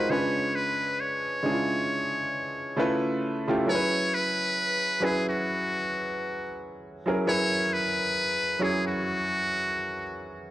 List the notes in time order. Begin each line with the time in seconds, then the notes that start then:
Already playing: G#3 D#4 F4 F#4 A#4 B4 C5
0.09 C#3 G#3 D4 F4 B4 C#5
0.55 B4
1.00 C#5
1.43 C#3 G#3 D4 E4 G#4
1.51 F4
2.76 C#3 A3 E4 F4 B4
3.48 C#3 A3 E4 F4 G4
3.66 F#3 C#4 E4 G#4 A#4 C#5
3.75 B4
4.15 B4
5.00 F#3 C#4 E4 G#4 B4
5.04 G#4
5.29 F#4
7.06 F#3 C#4 E4 G#4 A#4
7.25 F#3 C#4 E4 G#4 B4 C#5
7.73 B4
8.59 F#3 C#4 E4 G#4 C#5
8.87 F#4